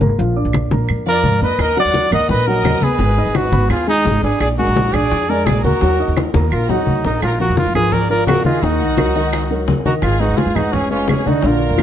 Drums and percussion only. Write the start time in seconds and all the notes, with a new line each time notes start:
0.01 high conga
0.19 high conga
0.37 high conga
0.53 high conga, claves
0.71 high conga
0.89 high conga, claves
1.06 high conga
1.24 high conga
1.41 high conga
1.59 high bongo, high conga, claves
1.76 high conga
1.94 high bongo, high conga
2.12 high conga, low conga, claves
2.29 high bongo, high conga, low conga
2.48 high conga
2.64 high bongo, low bongo, high conga, claves
2.82 high conga
2.99 high bongo
3.17 high bongo, high conga
3.35 high bongo, high conga, claves
3.53 high conga
3.70 high bongo, high conga, claves
3.88 high bongo, high conga
4.06 high bongo, low bongo, high conga
4.23 high bongo, high conga
4.40 high bongo, high conga, claves
4.59 high conga
4.76 high bongo, high conga
4.94 high conga, low conga, claves
5.11 high bongo, high conga
5.30 high conga
5.47 high bongo, low bongo, high conga, claves
5.65 high conga
5.81 high bongo, high conga
5.99 high bongo, high conga
6.17 high bongo, high conga, claves
6.34 high bongo, high conga
6.52 high conga, claves
6.69 low bongo, high conga
6.87 high conga
7.04 low bongo, high conga
7.22 high bongo, high conga, claves
7.39 high conga
7.57 high bongo, high conga
7.75 high conga, low conga, claves
7.92 high bongo, high conga, low conga
8.10 high conga
8.27 high bongo, low bongo, high conga, claves
8.45 high conga
8.63 high bongo, high conga
8.80 high bongo, high conga
8.97 high bongo, high conga, claves
9.33 high bongo, high conga, claves
9.51 high bongo, high conga
9.68 high bongo, low bongo, high conga
9.86 high bongo, high conga
10.02 high bongo, high conga, claves
10.21 high conga
10.38 high bongo, high conga
10.56 high conga, low conga, claves
10.73 high bongo, high conga, low conga
10.91 high conga
11.08 high bongo, low bongo, high conga, claves
11.27 high conga
11.42 high bongo, high conga
11.60 high bongo, high conga
11.78 high bongo, high conga, claves